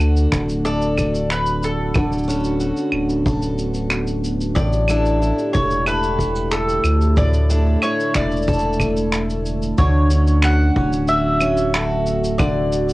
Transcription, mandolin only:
0.65 1.31 D5 loud
1.31 1.64 B4 medium
1.64 2.25 A4 medium
4.55 5.53 D5 loud
5.53 5.86 C#5 medium
5.87 6.48 B4 loud
6.52 7.19 A4 medium
7.17 7.82 D5 medium
7.83 8.15 C#5 loud
8.16 9.42 D5 medium
9.78 10.45 C#5 medium
10.44 11.11 F#5 loud
11.09 12.38 E5 loud
12.38 12.93 D5 medium

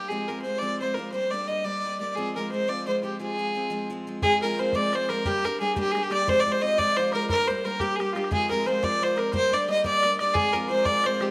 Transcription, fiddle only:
0.08 0.29 G#4 medium
0.28 0.41 A#4 medium
0.42 0.60 C5 medium
0.58 0.79 D5 medium
0.80 0.95 C5 medium
0.94 1.11 A#4 medium
1.12 1.32 C5 medium
1.30 1.49 D5 medium
1.47 1.65 D#5 medium
1.64 2.00 D5 medium
2.00 2.16 D5 medium
2.15 2.35 G#4 medium
2.36 2.51 A#4 medium
2.51 2.70 C5 medium
2.69 2.87 D5 medium
2.87 3.03 C5 medium
3.04 3.19 G4 medium
3.21 3.87 G#4 medium
4.22 4.40 G#4 loud
4.42 4.61 A#4 medium
4.59 4.76 C5 medium
4.75 4.96 D5 medium
4.95 5.11 C5 loud
5.09 5.27 A#4 medium
5.26 5.46 G4 loud
5.44 5.60 A#4 medium
5.60 5.75 G#4 medium
5.79 5.93 G4 loud
5.91 6.04 G#4 medium
6.03 6.12 G4 loud
6.13 6.30 D5 loud
6.29 6.41 C5 loud
6.40 6.53 D5 medium
6.51 6.63 C5 loud
6.62 6.79 D#5 loud
6.78 6.98 D5 loud
6.96 7.12 C5 loud
7.13 7.28 A#4 medium
7.30 7.49 A#4 loud
7.47 7.66 C5 medium
7.65 7.82 A#4 medium
7.80 7.97 G4 loud
7.96 8.02 G#4 medium
8.00 8.14 G4 medium
8.13 8.17 F4 medium
8.13 8.31 G4 medium
8.32 8.49 G#4 loud
8.50 8.68 A#4 medium
8.66 8.85 C5 medium
8.84 9.04 D5 loud
9.03 9.20 C5 medium
9.18 9.33 A#4 medium
9.33 9.55 C5 loud
9.53 9.68 D5 loud
9.69 9.83 D#5 loud
9.86 10.17 D5 loud
10.20 10.35 D5 medium
10.34 10.54 G#4 loud
10.53 10.69 A#4 medium
10.69 10.86 C5 loud
10.85 11.07 D5 loud
11.06 11.23 C5 medium
11.22 11.31 G4 medium

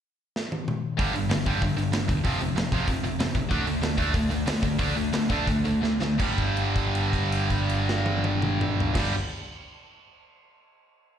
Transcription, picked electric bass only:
0.99 1.13 G1 medium
1.14 1.28 G1 medium
1.30 1.44 G1 loud
1.46 1.60 G1 medium
1.61 1.76 G1 medium
1.77 1.91 G1 medium
1.92 2.06 G1 medium
2.09 2.23 E1 medium
2.24 2.38 F1 medium
2.40 2.54 F1 medium
2.56 2.70 F1 medium
2.71 2.86 F1 medium
2.88 3.16 F1 medium
3.19 3.33 F1 medium
3.35 3.49 F1 medium
3.50 3.65 D2 loud
3.66 3.81 D2 medium
3.82 3.96 D2 medium
3.98 4.12 D2 medium
4.14 4.29 D2 medium
4.30 4.45 D2 medium
4.46 4.61 D2 loud
4.62 4.77 D2 medium
4.78 4.94 D2 medium
4.95 5.11 D2 medium
5.12 5.28 D2 loud
5.29 5.45 D2 medium
5.47 5.79 D2 medium
5.82 5.98 D2 medium
5.99 6.17 D2 medium
6.19 8.87 G1 medium
8.95 9.11 G1 medium

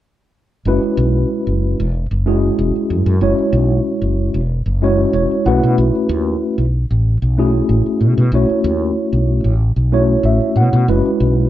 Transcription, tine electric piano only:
0.66 1.84 G#3 medium
0.66 1.85 C#4 medium
0.66 1.85 E4 medium
0.66 1.85 F#4 medium
0.66 1.85 B4 medium
2.26 3.14 G#3 medium
2.26 3.14 C#4 medium
2.26 3.15 E4 medium
2.26 3.15 F#4 medium
2.26 3.15 G#4 medium
3.21 4.39 G#3 medium
3.21 4.40 C#4 medium
3.21 4.40 E4 medium
3.21 4.40 F#4 medium
3.21 4.40 C#5 medium
4.82 5.46 G#3 medium
4.82 5.44 C#4 medium
4.82 5.45 E4 medium
4.82 5.46 F#4 medium
4.82 5.13 C#5 medium
5.14 5.44 C#5 medium
5.46 6.64 A3 medium
5.46 6.64 C#4 medium
5.46 6.64 E4 medium
5.46 6.64 F#4 medium
5.46 6.65 B4 medium
5.46 5.76 F#5 medium
7.38 8.26 A3 medium
7.38 8.27 C#4 medium
7.38 8.27 E4 medium
7.38 8.27 F#4 medium
7.38 8.27 G#4 medium
8.33 9.51 A3 medium
8.33 9.52 C#4 medium
8.33 9.52 E4 medium
8.33 9.52 F#4 medium
8.33 9.52 C#5 medium
9.92 10.82 A3 medium
9.92 10.82 C#4 medium
9.92 10.82 E4 medium
9.92 10.82 F#4 medium
9.92 10.82 C#5 medium
10.25 10.55 E5 medium
10.57 10.87 F#5 medium
10.88 11.49 G#3 medium
10.88 11.49 C#4 medium
10.88 11.49 E4 medium
10.88 11.49 F#4 medium
10.88 11.49 B4 medium

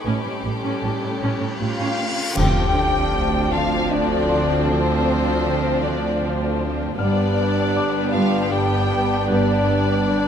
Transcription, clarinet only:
1.59 2.38 F4 medium
2.37 3.54 G4 medium
3.52 3.93 F4 medium
3.91 4.68 D4 medium
4.68 5.85 C4 medium
5.84 6.22 D4 medium
6.99 8.15 D4 medium
8.14 8.53 F4 medium
8.52 9.27 G4 medium
9.28 10.28 D4 medium

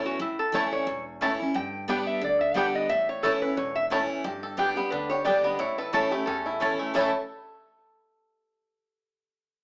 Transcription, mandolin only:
0.54 0.64 A3 medium
0.54 0.64 E4 medium
0.54 0.64 C#5 medium
0.54 0.64 A5 loud
1.21 1.31 A3 loud
1.21 1.31 E4 medium
1.21 1.31 C#5 medium
1.21 1.32 A5 loud
1.88 1.98 B3 loud
1.88 1.99 G4 medium
1.88 1.99 D5 medium
1.88 1.99 G5 medium
2.55 2.66 B3 loud
2.55 2.66 G4 medium
2.55 2.66 D5 loud
2.55 2.66 G5 loud
3.23 3.33 A3 medium
3.23 3.33 E4 medium
3.23 3.33 C#5 medium
3.23 3.34 A5 loud
3.90 4.01 A3 medium
3.90 4.01 E4 loud
3.90 4.01 C#5 medium
3.90 4.01 A5 medium
4.58 4.68 B3 medium
4.58 4.68 G4 medium
4.58 4.68 D5 loud
4.58 4.68 G5 loud
5.25 5.35 B3 medium
5.25 5.35 G4 medium
5.25 5.36 D5 medium
5.25 5.36 G5 medium
5.92 6.03 A3 medium
5.92 6.03 E4 medium
5.92 6.03 C#5 medium
5.92 6.04 A5 loud
6.60 6.71 A3 loud
6.60 6.71 E4 medium
6.60 6.71 C#5 medium
6.60 6.71 A5 medium
6.94 7.09 A3 medium
6.94 7.10 E4 medium
6.94 7.10 C#5 medium
6.94 7.10 A5 loud

